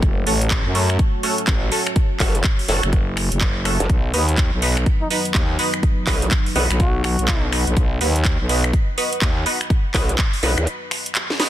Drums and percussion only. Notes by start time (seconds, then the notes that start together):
0.02 kick, closed hi-hat
0.27 open hi-hat
0.41 closed hi-hat
0.51 kick, clap, closed hi-hat
0.75 open hi-hat
0.90 finger snap
0.99 kick, closed hi-hat
1.23 open hi-hat
1.38 closed hi-hat
1.47 kick, clap, closed hi-hat
1.72 open hi-hat
1.87 finger snap, closed hi-hat
1.96 kick, closed hi-hat
2.20 kick, clap, open hi-hat
2.35 closed hi-hat
2.44 kick, clap, closed hi-hat
2.59 open hi-hat
2.68 open hi-hat
2.83 finger snap
2.93 kick, closed hi-hat
3.17 finger snap, open hi-hat
3.32 closed hi-hat
3.41 kick, clap, closed hi-hat
3.65 finger snap, open hi-hat
3.80 closed hi-hat
3.90 kick, closed hi-hat
4.14 open hi-hat
4.29 closed hi-hat
4.38 kick, clap, closed hi-hat
4.62 open hi-hat
4.77 finger snap, closed hi-hat
4.86 kick, closed hi-hat
5.10 open hi-hat
5.25 closed hi-hat
5.34 kick, clap, closed hi-hat
5.59 open hi-hat
5.74 finger snap, closed hi-hat
5.83 kick, closed hi-hat
6.07 kick, clap, open hi-hat
6.22 closed hi-hat
6.31 kick, clap, closed hi-hat
6.46 open hi-hat
6.56 open hi-hat
6.71 finger snap, closed hi-hat
6.80 kick, closed hi-hat
7.04 finger snap, open hi-hat
7.19 closed hi-hat
7.28 kick, clap, closed hi-hat
7.53 finger snap, open hi-hat
7.67 closed hi-hat
7.77 kick, closed hi-hat
8.01 open hi-hat
8.16 closed hi-hat
8.25 kick, clap, closed hi-hat
8.49 open hi-hat
8.64 finger snap, closed hi-hat
8.73 kick, closed hi-hat
8.98 open hi-hat
9.13 closed hi-hat
9.22 kick, clap, closed hi-hat
9.46 open hi-hat
9.61 finger snap
9.70 kick, closed hi-hat
9.94 kick, clap, open hi-hat
10.09 closed hi-hat
10.18 kick, clap, closed hi-hat
10.33 open hi-hat
10.43 open hi-hat
10.58 finger snap, closed hi-hat
10.67 closed hi-hat
10.91 finger snap, open hi-hat
11.06 closed hi-hat
11.15 clap, closed hi-hat
11.30 snare
11.40 snare, open hi-hat